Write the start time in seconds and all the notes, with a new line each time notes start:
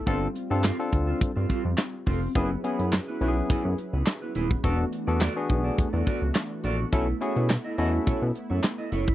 0.06 G1 G3 C4 D4 F4 A4, kick, closed hi-hat
0.21 muted clean electric guitar stroke
0.35 muted clean electric guitar stroke, closed hi-hat
0.50 G2 C4 D4 F4 A4
0.64 C4 F4 A4, snare, clap, closed hi-hat
0.79 C4 D4 F4 A4, muted clean electric guitar stroke
0.92 D2, muted clean electric guitar stroke, kick, closed hi-hat
1.07 C4 F4 A4
1.21 G2, muted clean electric guitar stroke, kick, closed hi-hat
1.36 G2 C4 F4 A4
1.49 C4 F4 A4, kick, closed hi-hat
1.65 F2, muted clean electric guitar stroke
1.77 snare, clap, closed hi-hat
1.93 muted clean electric guitar stroke
2.06 F1 C4 F4 A4, kick, open hi-hat
2.22 muted clean electric guitar stroke
2.35 F#1 F#3 B3 C#4 E4 G#4 B4, kick, closed hi-hat
2.51 muted clean electric guitar stroke
2.64 B3 C#4 E4 G#4, closed hi-hat
2.79 F#2 B3 E4 G#4, closed hi-hat
2.92 muted clean electric guitar stroke, snare, clap, closed hi-hat
3.08 B3 E4 B4
3.21 B1 B3 C#4 E4 F#4 B4, closed hi-hat
3.28 G#4
3.37 muted clean electric guitar stroke
3.50 F#2 B3 E4 G#4, kick, closed hi-hat
3.65 F#2, muted clean electric guitar stroke
3.78 muted clean electric guitar stroke, closed hi-hat
3.93 C#2 B3 E4 G#4
4.06 muted clean electric guitar stroke, snare, clap, closed hi-hat
4.22 B3 E4 B4
4.35 D#1 B3 E4 G#4, closed hi-hat
4.50 muted clean electric guitar stroke, kick
4.63 E1 E3 A3 B3 D4 F#4 A4 D5, kick, closed hi-hat
4.79 muted clean electric guitar stroke
4.92 muted clean electric guitar stroke, closed hi-hat
5.07 E2 B3 D4 F#4 A4 D5
5.21 F#4 A4 D5, snare, clap, closed hi-hat
5.36 B3 D4 F#4 G#4, muted clean electric guitar stroke
5.49 B1, muted clean electric guitar stroke, kick, closed hi-hat
5.64 F#4 A4 D5
5.78 E2, muted clean electric guitar stroke, kick, closed hi-hat
5.93 E2 F#4 A4 D5
6.06 F#4 A4 D5, kick, closed hi-hat
6.22 C#2, muted clean electric guitar stroke
6.35 snare, clap, closed hi-hat
6.50 muted clean electric guitar stroke
6.64 A#1 F#4 A4 D5, closed hi-hat
6.79 muted clean electric guitar stroke
6.92 B1 A3 B3 C#4 E4 F#4 A4 C#5, kick, closed hi-hat
7.07 muted clean electric guitar stroke
7.21 C#4 E4 F#4 G#4 A4 C#5, closed hi-hat
7.36 B2 E4 A4 C#5, closed hi-hat
7.49 muted clean electric guitar stroke, snare, clap, closed hi-hat
7.64 E4 A4 D#5
7.78 E2 C#4 E4 F#4 A4 D#5, closed hi-hat
7.93 muted clean electric guitar stroke
8.06 B2 E4 A4 C#5, kick, closed hi-hat
8.21 B2, muted clean electric guitar stroke
8.35 muted clean electric guitar stroke, closed hi-hat
8.50 F#2 E4 A4 C#5
8.63 snare, clap, closed hi-hat
8.78 E4 A4 D#5
8.92 F#1 E4 A4 C#5, closed hi-hat
9.07 muted clean electric guitar stroke, kick